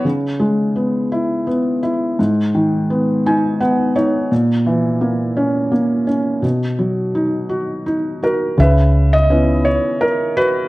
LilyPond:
<<
  \new Staff \with { instrumentName = "Felt piano" } { \time 3/4 \key cis \dorian \tempo 4 = 84 << { r2. | r4. gis''8 fis''8 cis''8 | r2. | r2 r8 ais'8 |
e''8. dis''8. cis''8 ais'8 b'8 | } \\ { r2. | r2. | r2. | r2. |
b'4. r4 fis'8 | } >> }
  \new Staff \with { instrumentName = "Felt piano" } { \time 3/4 \key cis \dorian cis8 gis8 b8 e'8 b8 e'8 | gis,8 dis8 b8 dis'8 b8 dis'8 | ais,8 e8 ais8 cis'8 ais8 cis'8 | b,8 fis8 dis'8 fis'8 dis'8 fis'8 |
cis4 <b cis' e'>2 | }
  \new Staff \with { instrumentName = "Fingered electric bass" } { \clef bass \time 3/4 \key cis \dorian r2. | r2. | r2. | r2. |
cis,2 r4 | }
>>